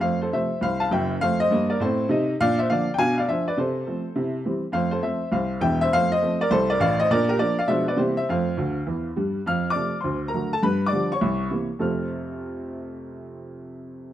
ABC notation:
X:1
M:4/4
L:1/16
Q:"Swing" 1/4=204
K:F
V:1 name="Upright piano"
[cf]2 [Ac]2 [ce]4 [cf]2 [fa]2 [eg]4 | [cf]2 [c_e]4 [Bd]2 [Ac]6 z2 | [df]2 [ce]2 [df]3 g [f_a]2 [df]2 [ce]2 [=Bd]2 | [Ac]12 z4 |
[cf]2 [Ac]2 [ce]4 [cf]4 [eg]2 [ce]2 | [cf]2 [c_e]4 [Bd]2 [Ac]2 [Bd]2 [df]2 [ce]2 | [Bd]2 [GB]2 [Bd]2 [df]2 [ce]2 [=Bd]2 [Gc]2 [ce]2 | [cf]12 z4 |
[ff']3 [dd']4 [cc']4 [Bb]3 [Aa]2 | [=B=b]3 [dd']3 [_d_d']8 z2 | [F,,C,A,CFAf']16- | [F,,C,A,CFAf']16 |]
V:2 name="Upright piano" clef=bass
[F,,A,]4 [C,F,A,]4 C,,4 [_G,,,_G,,]4 | [F,,A,]4 [G,,B,]4 [A,,C]4 [C,_E]4 | [B,,D]4 [D,F,B,]4 [=B,,D]4 [F,D]4 | C,4 [F,A,C]4 [C,E]4 [E,G,C]4 |
[F,,A,]4 [F,A,C]4 C,,4 [E,,,E,,]4 | [F,,A,]4 [F,A,C]4 C,,4 [A,,,A,,]4 | [B,,D]4 [F,B,D]4 [=B,,F,^G,=B,D]4 [C,E,=G,_B,E]4 | [F,,A,]4 [D,,D,]4 [E,,E,]4 [G,,G,]4 |
F,,4 [C,F,A,]4 D,,4 [D,^F,A,]4 | G,,4 [D,F,G,]4 C,,4 [C,E,B,]4 | z16 | z16 |]